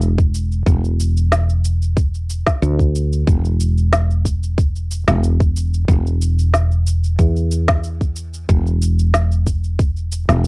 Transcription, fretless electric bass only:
0.00 0.62 E1 medium
0.66 2.42 E1 medium
2.62 3.23 D2 medium
3.27 5.03 E1 medium
5.08 5.84 E1 medium
5.88 7.18 E1 medium
7.19 8.45 E2 medium
8.49 10.25 E1 medium
10.29 10.47 E1 medium

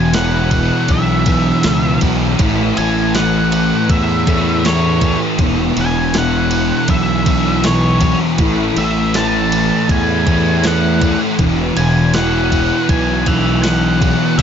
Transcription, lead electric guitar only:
0.00 0.14 G#5 loud
0.15 0.92 F#5 loud
0.91 1.99 E5 medium
2.78 3.15 G#5 loud
3.15 3.92 F#5 loud
3.91 4.65 E5 medium
4.66 5.18 C#5 medium
5.81 6.18 G#5 medium
6.18 6.94 F#5 loud
6.90 7.65 E5 medium
7.66 8.17 C#5 medium
8.78 9.16 E5 medium
9.16 9.91 A5 loud
9.91 10.67 G#5 medium
10.67 11.18 F#5 medium
11.77 12.14 G#5 loud
12.15 12.92 F#5 medium
12.90 13.98 G#5 medium
13.28 13.63 E5 medium
13.63 14.40 F#5 medium
14.38 14.42 E5 medium

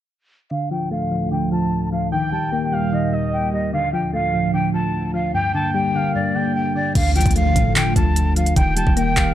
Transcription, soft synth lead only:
2.12 2.69 G5 loud
2.72 3.10 F5 medium
3.13 3.70 D#5 medium
5.35 5.91 G5 loud
5.95 6.33 F5 medium
6.34 6.91 G5 medium
8.56 9.13 G5 loud
9.16 9.34 F5 medium

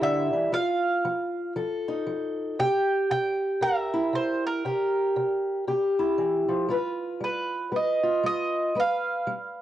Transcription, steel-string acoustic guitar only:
0.00 0.33 D3 medium
0.00 0.54 G3 medium
0.00 0.52 E4 medium
0.00 0.52 G4 medium
0.00 0.51 A#4 medium
0.33 0.52 E3 medium
0.52 1.00 F3 medium
0.52 2.56 F4 medium
1.05 1.52 F3 medium
1.56 2.03 F3 medium
1.56 2.59 A4 medium
1.88 2.57 D#4 medium
2.06 2.55 F3 medium
2.59 3.07 C3 medium
2.59 4.65 G4 medium
3.11 3.58 C3 medium
3.61 4.09 C3 medium
3.61 4.62 A#4 medium
3.93 4.62 E4 medium
4.13 4.60 C3 medium
4.65 5.12 C3 medium
4.65 5.67 G4 medium
5.16 5.63 C3 medium
5.67 6.15 C3 medium
5.67 6.70 G4 medium
5.99 6.68 E4 medium
6.18 6.48 E3 medium
6.49 6.69 F3 medium
6.69 7.17 G3 medium
6.69 8.02 F4 medium
6.69 7.72 B4 medium
7.21 7.68 G3 medium
7.72 8.20 G3 medium
7.72 8.73 B4 medium
8.03 8.73 F4 medium
8.24 8.71 G3 medium
8.75 9.23 G3 medium
8.75 9.62 B4 medium
9.27 9.62 G3 medium

